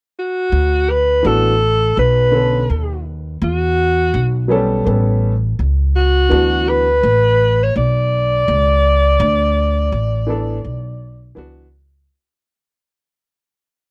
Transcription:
0.19 0.91 F#4 medium
0.52 1.21 D2 medium
0.90 1.28 B4 loud
1.23 1.93 A1 medium
1.23 1.52 E3 medium
1.23 1.52 B3 medium
1.23 1.53 D4 medium
1.23 1.53 F#4 medium
1.23 1.98 A4 medium
1.97 2.66 B1 medium
1.97 3.02 B4 loud
2.31 2.60 D3 medium
2.31 2.61 B3 medium
2.31 2.61 C#4 medium
2.31 2.62 A4 medium
2.70 3.38 D#2 medium
3.42 4.10 E2 loud
3.42 4.47 F#4 loud
4.14 4.82 B1 medium
4.48 4.57 F#3 medium
4.48 4.84 B3 medium
4.48 4.85 C#4 medium
4.48 4.86 A4 medium
4.55 4.83 G3 medium
4.84 5.55 A1 medium
4.84 5.30 G3 medium
4.84 5.31 B3 medium
4.84 5.32 C#4 medium
4.84 5.32 A4 medium
5.59 6.27 C#2 medium
5.96 6.70 F#4 medium
6.29 7.00 D2 loud
6.29 6.84 E3 medium
6.29 6.85 B3 medium
6.29 6.85 D4 medium
6.29 6.86 F#4 medium
6.69 7.65 B4 loud
7.03 7.72 A1 medium
7.63 7.76 C#5 medium
7.76 8.44 B1 medium
7.76 11.34 D5 loud
8.48 9.16 C#2 medium
9.20 9.88 D2 loud
9.92 10.61 A1 medium
10.27 10.55 E3 medium
10.27 10.56 B3 medium
10.27 10.57 D4 medium
10.27 10.57 A4 medium
10.65 11.33 B1 medium
11.35 12.05 C#2 medium
11.35 11.64 E3 medium
11.35 11.64 B3 medium
11.35 11.65 D4 medium
11.35 11.66 F#4 medium

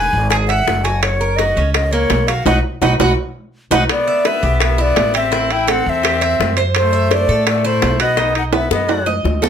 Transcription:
0.00 0.30 B4 medium
0.00 0.29 G#5 loud
0.13 0.63 G#1 medium
0.30 0.49 G#4 medium
0.30 0.36 G#5 loud
0.30 high bongo medium
0.30 high timbale loud
0.48 0.84 E5 medium
0.48 0.86 F#5 loud
0.48 high bongo soft
0.48 high timbale medium
0.67 1.51 F#1 medium
0.67 high bongo medium
0.67 low bongo medium
0.84 1.20 F#4 medium
0.84 1.04 G#5 medium
0.84 high bongo soft
0.84 high timbale medium
1.03 1.38 C#5 medium
1.03 high bongo medium
1.03 high timbale medium
1.21 1.38 A#4 medium
1.36 1.56 F#4 medium
1.36 1.74 D#5 medium
1.36 high bongo medium
1.36 high timbale medium
1.56 2.07 C#2 medium
1.56 1.92 C#4 medium
1.74 1.93 D#5 medium
1.74 high bongo medium
1.74 high timbale medium
1.91 2.27 A#3 medium
1.91 2.29 C#5 medium
2.10 2.44 B1 medium
2.10 high bongo medium
2.10 low bongo medium
2.10 high timbale medium
2.10 low timbale medium
2.28 2.45 F#4 medium
2.28 2.46 F5 medium
2.28 high timbale medium
2.45 2.59 B1 medium
2.45 2.58 D#4 medium
2.45 2.58 F#4 medium
2.45 2.58 B4 medium
2.45 2.58 F#5 medium
2.45 low bongo loud
2.45 high timbale loud
2.82 2.95 B1 loud
2.82 2.94 D#4 medium
2.82 2.94 F#4 medium
2.82 2.94 B4 medium
2.82 2.93 F#5 loud
2.82 low bongo medium
2.82 high timbale medium
3.00 3.13 B1 medium
3.00 3.12 D#4 medium
3.00 3.12 F#4 loud
3.00 3.12 B4 medium
3.00 3.12 F#5 medium
3.00 low bongo loud
3.00 high timbale medium
3.71 3.84 B1 medium
3.71 3.83 D#4 loud
3.71 3.83 F#4 medium
3.71 3.83 B4 loud
3.71 3.84 F#5 medium
3.71 low bongo medium
3.71 high timbale medium
3.89 4.27 B3 medium
3.89 4.29 D5 loud
3.89 high bongo medium
3.89 high timbale medium
4.08 4.25 E5 medium
4.25 4.62 B3 medium
4.25 4.42 B4 medium
4.25 4.62 E5 loud
4.25 high bongo medium
4.25 high timbale medium
4.43 4.93 B1 medium
4.43 4.78 G4 medium
4.60 4.81 B3 medium
4.60 4.83 E5 medium
4.60 high bongo medium
4.60 high timbale loud
4.78 5.16 B3 medium
4.78 5.13 E4 medium
4.78 5.16 D5 loud
4.96 5.80 A1 medium
4.96 high bongo medium
4.96 low bongo medium
4.96 high timbale medium
4.96 low timbale medium
5.14 5.54 C4 medium
5.14 5.32 G4 medium
5.14 5.53 E5 medium
5.14 high timbale medium
5.32 5.67 E4 medium
5.32 high bongo medium
5.51 5.71 E4 medium
5.51 5.72 G5 medium
5.51 high bongo soft
5.51 high timbale medium
5.67 5.88 C4 medium
5.67 6.02 A4 medium
5.67 5.91 F#5 loud
5.67 high bongo medium
5.67 high timbale loud
5.86 6.36 E2 loud
5.86 6.58 C4 loud
5.86 6.59 E5 loud
6.03 6.21 G4 medium
6.03 high bongo medium
6.03 high timbale loud
6.21 6.56 E5 medium
6.21 high bongo soft
6.21 high timbale medium
6.40 7.23 F#2 medium
6.40 high bongo medium
6.40 low bongo medium
6.57 6.92 C5 medium
6.57 high bongo soft
6.57 high timbale medium
6.75 7.13 A3 medium
6.75 7.14 C5 loud
6.75 high bongo medium
6.75 high timbale medium
6.93 7.10 E5 medium
7.11 7.47 A3 medium
7.11 7.28 C5 medium
7.11 7.47 D5 loud
7.11 high bongo medium
7.11 high timbale medium
7.28 7.78 A2 loud
7.28 7.63 A4 medium
7.47 7.65 A3 medium
7.47 7.67 D5 medium
7.47 high bongo medium
7.47 high timbale medium
7.64 8.01 A3 medium
7.64 7.99 E4 medium
7.64 8.01 C5 medium
7.82 8.66 B1 medium
7.82 high bongo medium
7.82 low bongo medium
7.82 high timbale medium
7.82 low timbale medium
8.00 8.34 B3 medium
8.00 8.17 F#4 medium
8.00 8.34 D#5 medium
8.00 high timbale medium
8.17 8.52 D#4 medium
8.17 high bongo medium
8.35 8.43 D#4 medium
8.35 8.44 F#5 medium
8.35 high bongo soft
8.35 high timbale medium
8.53 8.70 B3 medium
8.53 8.88 B4 medium
8.53 8.71 E5 medium
8.53 high bongo medium
8.53 high timbale medium
8.70 9.21 F#2 medium
8.70 9.12 B3 medium
8.70 9.14 D#5 medium
8.70 high bongo medium
8.89 9.06 F#4 medium
8.89 high timbale medium
9.06 9.41 D#5 medium
9.06 low bongo medium
9.24 9.49 D2 medium
9.24 low bongo medium
9.42 9.49 A4 medium
9.42 low bongo medium
9.42 low timbale medium

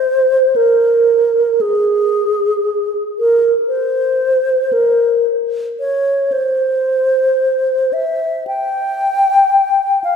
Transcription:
0.00 0.58 C5 medium
0.56 1.62 A#4 medium
1.61 2.96 G#4 medium
3.19 3.52 A#4 medium
3.68 4.74 C5 medium
4.73 5.26 A#4 medium
5.80 6.33 C#5 medium
6.32 7.95 C5 medium
7.93 8.47 E5 medium
8.47 10.02 G5 medium
10.04 10.16 F5 medium

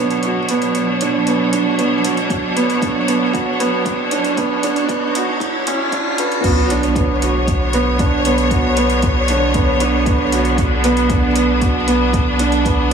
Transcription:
0.00 6.40 B2 medium
0.00 6.40 F#3 medium
0.00 0.50 B3 medium
0.00 1.02 D4 medium
0.00 6.40 D4 medium
0.00 0.25 F#4 medium
0.00 6.40 C#5 medium
0.00 riser medium
0.10 closed hi-hat soft
0.23 0.39 F#4 medium
0.23 closed hi-hat soft
0.49 0.75 B3 medium
0.49 closed hi-hat medium
0.62 closed hi-hat soft
0.75 closed hi-hat soft
1.01 1.26 D4 medium
1.01 closed hi-hat medium
1.27 1.52 B3 medium
1.27 closed hi-hat soft
1.53 1.78 D4 medium
1.53 closed hi-hat medium
1.79 1.94 B3 medium
1.79 closed hi-hat soft
2.04 2.29 F#4 medium
2.04 closed hi-hat medium
2.17 closed hi-hat soft
2.30 kick loud
2.30 closed hi-hat soft
2.56 2.81 B3 medium
2.56 closed hi-hat medium
2.70 closed hi-hat soft
2.82 2.97 D4 medium
2.82 kick loud
2.82 closed hi-hat soft
3.08 3.23 B3 medium
3.08 closed hi-hat medium
3.33 3.49 F#4 medium
3.33 kick loud
3.33 closed hi-hat soft
3.60 3.85 B3 medium
3.60 closed hi-hat medium
3.85 kick loud
3.85 closed hi-hat soft
4.11 4.37 D4 medium
4.11 closed hi-hat medium
4.25 closed hi-hat soft
4.37 4.62 B3 medium
4.37 kick loud
4.37 closed hi-hat soft
4.63 4.88 D4 medium
4.63 closed hi-hat medium
4.76 closed hi-hat soft
4.89 5.04 B3 medium
4.89 kick loud
4.89 closed hi-hat soft
5.15 5.40 F#4 medium
5.15 closed hi-hat medium
5.40 kick loud
5.40 closed hi-hat soft
5.67 5.92 C#4 medium
5.67 closed hi-hat medium
5.92 6.18 D4 medium
5.92 kick loud
5.92 closed hi-hat soft
6.18 6.44 B4 medium
6.18 closed hi-hat medium
6.32 closed hi-hat soft
6.44 12.93 B1 medium
6.44 12.93 D3 medium
6.44 12.93 B3 medium
6.44 6.69 B3 medium
6.44 10.55 C#5 medium
6.44 kick loud
6.44 closed hi-hat soft
6.44 crash loud
6.44 sub drop medium
6.70 6.95 D4 medium
6.70 closed hi-hat medium
6.83 closed hi-hat soft
6.96 7.12 B3 medium
6.96 kick loud
6.96 closed hi-hat soft
7.22 7.47 F#4 medium
7.22 closed hi-hat medium
7.47 kick loud
7.47 closed hi-hat soft
7.73 7.99 B3 loud
7.73 closed hi-hat medium
7.99 8.15 D4 medium
7.99 kick loud
7.99 closed hi-hat soft
8.25 8.40 B3 medium
8.25 closed hi-hat medium
8.38 closed hi-hat soft
8.51 8.67 F#4 medium
8.51 kick loud
8.51 closed hi-hat soft
8.77 9.02 B3 loud
8.77 closed hi-hat medium
8.90 closed hi-hat soft
9.02 kick loud
9.02 closed hi-hat soft
9.28 9.54 D4 medium
9.28 closed hi-hat medium
9.54 9.80 B3 medium
9.54 kick loud
9.54 closed hi-hat soft
9.80 10.06 D4 medium
9.80 closed hi-hat medium
10.06 10.22 B3 medium
10.06 kick loud
10.06 closed hi-hat soft
10.32 10.57 F#4 medium
10.32 closed hi-hat medium
10.45 closed hi-hat soft
10.58 12.93 D4 medium
10.58 kick loud
10.58 closed hi-hat soft
10.84 11.09 B3 loud
10.84 closed hi-hat medium
10.97 closed hi-hat soft
11.10 11.25 D4 medium
11.10 kick loud
11.10 closed hi-hat soft
11.36 11.51 B3 medium
11.36 closed hi-hat medium
11.61 11.76 F#4 medium
11.61 kick loud
11.61 closed hi-hat soft
11.87 12.12 B3 medium
11.87 closed hi-hat medium
12.13 kick loud
12.13 closed hi-hat soft
12.39 12.64 D4 medium
12.39 closed hi-hat medium
12.52 closed hi-hat soft
12.65 12.90 B3 medium
12.65 kick loud
12.65 closed hi-hat soft

